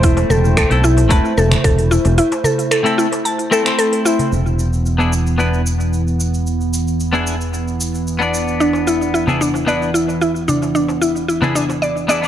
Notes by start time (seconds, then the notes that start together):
Already playing: E1 A3 C4 E4 C5
0.03 E4, kick, open hi-hat, shaker
0.17 open hi-hat, darbuka tek, shaker
0.30 E1 A4, darbuka dum, shaker
0.45 shaker
0.57 A4, finger snap, kick, open hi-hat, shaker
0.70 B1 A3 C4 E4 A4, open hi-hat, shaker
0.83 E4, darbuka tek, shaker
0.97 open hi-hat, darbuka ka, darbuka tek, shaker
1.09 E1 A3 C4 E4 B4 A5, kick, open hi-hat, shaker
1.25 shaker
1.37 E1 A4, darbuka ka, shaker
1.51 finger snap, open hi-hat, darbuka ka, darbuka dum, shaker
1.64 E1 A4, kick, open hi-hat, shaker
1.79 open hi-hat, shaker
1.91 E4, darbuka ka, shaker
2.05 E1, open hi-hat, darbuka tek, shaker
2.18 E4, open hi-hat, shaker
2.32 open hi-hat, darbuka tek, shaker
2.44 A4, darbuka dum, shaker
2.59 open hi-hat, shaker
2.71 A4, finger snap, open hi-hat, shaker
2.84 A3 C4 E4 A4, open hi-hat, shaker
2.98 E4, darbuka tek, shaker
3.12 open hi-hat, darbuka ka, darbuka tek, shaker
3.25 A5, open hi-hat, shaker
3.39 open hi-hat, shaker
3.51 A3 C4 E4 A4, darbuka ka, shaker
3.64 A3 C4 E4, finger snap, open hi-hat, darbuka ka, shaker
3.68 C5
3.79 A4, open hi-hat, shaker
3.93 open hi-hat, darbuka ka, shaker
4.05 E4, darbuka ka, shaker
4.19 open hi-hat, darbuka dum, shaker
4.32 E1 E3 B3 E4, shaker
4.46 shaker
4.59 shaker
4.73 shaker
4.86 shaker
4.98 B3 D4 E4 G#4, shaker
5.13 shaker
5.27 shaker
5.38 B3 D4 E4 B4, shaker
5.54 shaker
5.66 shaker
5.80 shaker
5.93 shaker
6.07 shaker
6.20 shaker
6.34 shaker
6.47 shaker
6.61 shaker
6.73 shaker
6.87 shaker
7.00 shaker
7.13 B3 D4 E4 G#4, shaker
7.27 shaker
7.41 shaker
7.54 shaker
7.68 shaker
7.81 shaker
7.95 shaker
8.07 shaker
8.19 B3 D4 D5, shaker
8.34 shaker
8.48 shaker
8.60 D4, shaker
8.73 darbuka tek, shaker
8.87 E4, shaker
9.02 shaker
9.14 E4, shaker
9.27 B3 D4 E4 G#4, darbuka dum, shaker
9.41 D4, darbuka tek, shaker
9.54 darbuka ka, darbuka tek, shaker
9.67 B3 D4 E4 B4 D5, shaker
9.82 shaker
9.94 E4, darbuka ka, shaker
10.08 darbuka ka, shaker
10.21 E4, shaker
10.36 shaker
10.48 D4, darbuka ka, darbuka dum, shaker
10.63 darbuka tek, shaker
10.75 D4, shaker
10.89 darbuka tek, shaker
11.02 E4, shaker
11.16 shaker
11.28 E4, shaker
11.42 B3 D4 E4 G#4, darbuka dum, shaker
11.55 D4, darbuka tek, shaker
11.69 darbuka ka, darbuka tek, shaker
11.82 D5, shaker
11.97 shaker
12.08 B3 D4 E4 G#4 D5, darbuka ka, shaker
12.21 B3 D4, darbuka ka, shaker